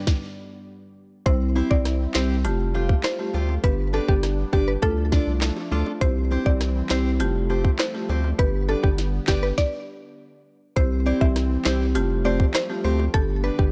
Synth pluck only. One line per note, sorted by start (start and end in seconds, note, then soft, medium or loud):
1.26 1.37 C5 loud
1.71 1.82 D5 medium
2.15 2.27 C5 medium
3.04 3.46 C5 loud
3.64 3.75 B4 loud
3.94 4.05 A4 medium
4.08 4.20 G4 medium
4.53 4.64 G4 medium
4.68 4.79 B4 medium
4.83 5.24 A4 loud
6.01 6.13 C5 loud
6.46 6.57 D5 medium
6.91 7.02 C5 medium
7.80 8.21 C5 medium
8.39 8.50 B4 loud
8.69 8.80 A4 medium
8.83 8.95 G4 medium
9.28 9.39 G4 medium
9.43 9.54 B4 medium
9.58 10.00 D5 loud
10.77 10.88 C5 loud
11.06 11.18 D5 medium
11.21 11.33 E5 medium
11.65 11.77 C5 medium
12.25 12.36 D5 medium
12.55 12.66 C5 medium
12.85 12.96 C5 medium
13.14 13.25 A4 loud
13.44 13.55 B4 medium
13.59 13.70 G4 medium